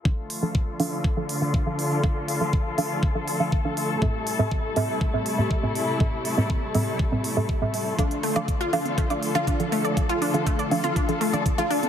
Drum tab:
HH |--o---o---o---o-|--o---o---o---o-|--o---o---o---o-|--o---o---o---o-|
CG |----------------|----------------|----------------|----------------|
BD |o---o---o---o---|o---o---o---o---|o---o---o---o---|o---o---o---o---|

HH |xxoxxxoxxxoxxxox|xxoxxxoxxxoxxxox|
CG |-------o--------|-------o-------o|
BD |o---o---o---o---|o---o---o---o---|